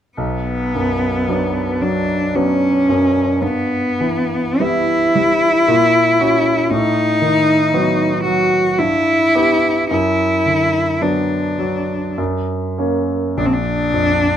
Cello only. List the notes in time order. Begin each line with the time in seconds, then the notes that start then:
0.17 B3
1.82 D4
2.35 C#4
3.42 B3
4.61 E4
6.70 D#4
8.23 F#4
8.78 E4
9.91 E4
11.01 D4
13.38 D4
13.46 C4
13.53 D4